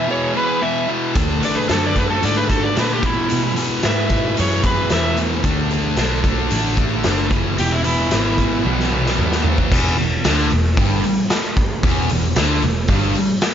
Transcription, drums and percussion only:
1.15 kick, closed hi-hat
1.43 closed hi-hat
1.69 snare, closed hi-hat
1.96 kick, closed hi-hat
2.23 closed hi-hat
2.50 kick, snare, closed hi-hat
2.76 snare, closed hi-hat
3.03 kick, closed hi-hat
3.29 closed hi-hat
3.56 closed hi-hat
3.83 snare, closed hi-hat
4.10 kick, closed hi-hat
4.37 closed hi-hat
4.63 kick, closed hi-hat
4.90 snare, closed hi-hat
5.17 closed hi-hat
5.44 kick, closed hi-hat
5.71 closed hi-hat
5.97 snare, closed hi-hat
6.24 kick, closed hi-hat
6.51 closed hi-hat
6.77 kick, closed hi-hat
7.04 snare, closed hi-hat
7.31 kick, closed hi-hat
7.58 closed hi-hat
7.84 closed hi-hat
8.11 snare, closed hi-hat
8.38 kick, closed hi-hat
8.66 high tom
8.80 snare
8.92 mid tom
9.06 snare
9.19 mid tom
9.32 snare
9.44 floor tom
9.58 kick
9.72 kick, crash
9.98 open hi-hat
10.24 snare, open hi-hat
10.50 open hi-hat
10.77 kick, open hi-hat
11.04 open hi-hat
11.30 snare, open hi-hat
11.57 kick, open hi-hat
11.83 kick, open hi-hat
12.10 open hi-hat
12.36 snare, open hi-hat
12.62 open hi-hat
12.88 kick, open hi-hat
13.15 open hi-hat
13.41 snare, open hi-hat

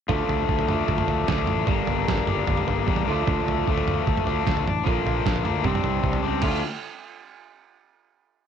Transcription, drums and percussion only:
0.09 kick, floor tom
0.29 floor tom
0.49 kick
0.59 floor tom
0.68 mid tom
0.88 kick, floor tom
0.98 mid tom
1.08 floor tom
1.28 kick, snare
1.38 floor tom
1.47 mid tom
1.67 kick, floor tom
1.87 floor tom
2.08 kick, snare
2.17 floor tom
2.27 mid tom
2.47 kick, floor tom, mid tom
2.57 mid tom
2.68 floor tom
2.88 kick
2.96 floor tom
3.27 kick, floor tom
3.48 floor tom
3.68 kick
3.77 floor tom
3.88 mid tom
4.07 kick, floor tom
4.17 mid tom
4.27 floor tom
4.47 kick, snare
4.57 floor tom
4.67 mid tom
4.87 kick, floor tom
5.07 floor tom
5.26 kick, snare
5.36 floor tom
5.45 mid tom
5.64 kick, floor tom, mid tom
5.75 mid tom
5.84 floor tom
6.04 kick
6.13 floor tom
6.42 kick, crash

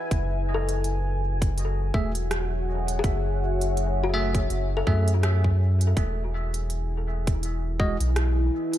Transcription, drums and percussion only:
0.11 kick, closed hi-hat
0.69 closed hi-hat
0.84 closed hi-hat
1.42 kick, closed hi-hat
1.58 closed hi-hat
1.94 kick
2.15 closed hi-hat
2.31 cross-stick, closed hi-hat
2.88 closed hi-hat
3.04 kick, closed hi-hat
3.61 closed hi-hat
3.77 closed hi-hat
4.35 kick, closed hi-hat
4.50 closed hi-hat
4.87 kick
5.08 closed hi-hat
5.23 cross-stick, closed hi-hat
5.44 kick
5.81 closed hi-hat
5.97 kick, closed hi-hat
6.54 closed hi-hat
6.70 closed hi-hat
7.27 kick, closed hi-hat
7.43 closed hi-hat
7.80 kick
8.00 closed hi-hat
8.16 cross-stick, closed hi-hat
8.73 closed hi-hat

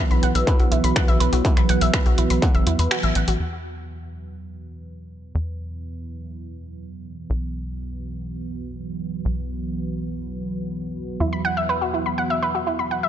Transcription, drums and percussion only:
0.11 closed hi-hat
0.23 closed hi-hat
0.35 closed hi-hat
0.47 kick, closed hi-hat
0.60 closed hi-hat
0.72 closed hi-hat
0.84 closed hi-hat
0.96 finger snap, kick, closed hi-hat
1.08 closed hi-hat
1.20 closed hi-hat
1.33 closed hi-hat
1.45 kick, closed hi-hat
1.57 finger snap, closed hi-hat
1.69 closed hi-hat
1.81 closed hi-hat
1.94 finger snap, kick, closed hi-hat
2.06 closed hi-hat
2.18 closed hi-hat
2.30 closed hi-hat
2.42 kick, closed hi-hat
2.55 closed hi-hat
2.67 closed hi-hat
2.79 closed hi-hat
2.91 finger snap, closed hi-hat
3.03 closed hi-hat
3.15 closed hi-hat
3.28 closed hi-hat

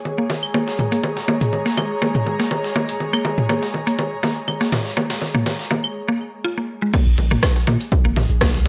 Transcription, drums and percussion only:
0.05 low bongo, shaker
0.30 snare, low bongo, shaker
0.43 claves
0.54 low bongo, shaker
0.68 snare
0.79 mid tom, low bongo, shaker
0.92 closed hi-hat
1.04 low bongo, shaker
1.17 snare
1.28 low bongo, shaker
1.41 closed hi-hat, mid tom
1.53 low bongo, shaker
1.66 snare
1.77 low bongo, claves, shaker
2.02 low bongo, shaker
2.15 mid tom
2.26 low bongo, shaker
2.40 snare
2.51 low bongo, shaker
2.64 snare
2.76 low bongo, shaker
2.89 closed hi-hat
3.00 low bongo, shaker
3.13 claves
3.25 low bongo, shaker
3.38 mid tom
3.49 low bongo, shaker
3.63 snare
3.74 low bongo, shaker
3.87 closed hi-hat
3.99 low bongo, shaker
4.23 snare, low bongo, shaker
4.48 low bongo, claves, shaker
4.61 snare
4.72 snare, mid tom, low bongo, shaker
4.86 snare
4.97 low bongo, shaker
5.10 snare, shaker
5.22 snare, low bongo
5.35 mid tom, shaker
5.46 snare, low bongo, shaker
5.59 snare
5.71 low bongo, shaker
5.84 claves
6.94 kick, crash, low bongo, cabasa, shaker
7.18 closed hi-hat, low bongo, shaker
7.31 mid tom, cabasa
7.43 kick, cross-stick, snare, low bongo, cabasa, claves, shaker
7.56 snare, cabasa
7.67 closed hi-hat, low bongo, shaker
7.80 closed hi-hat, cabasa
7.92 kick, low bongo, cabasa, shaker
8.05 cabasa
8.16 snare, closed hi-hat, mid tom, low bongo, shaker
8.30 cabasa
8.41 kick, cross-stick, snare, low bongo, cabasa, shaker
8.54 snare

